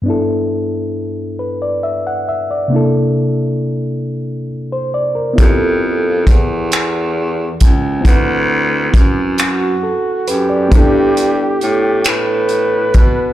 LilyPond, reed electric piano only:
\new Staff \with { instrumentName = "Reed electric piano" } { \time 6/8 \key g \major \tempo 4. = 45 << { r4. b'16 d''16 e''16 fis''16 e''16 d''16~ | d''16 r2 c''16 d''16 bes'16~ | bes'16 r2 r8. | r2 a'8 b'16 d''16~ |
d''16 r2 r8. | } \\ { <g, b d' e' a'>2. | <c bes d' e' a'>2. | <b e' g' a'>2. | <c' e' b' fis''>2. |
<b d' e' a'>2. | } >> }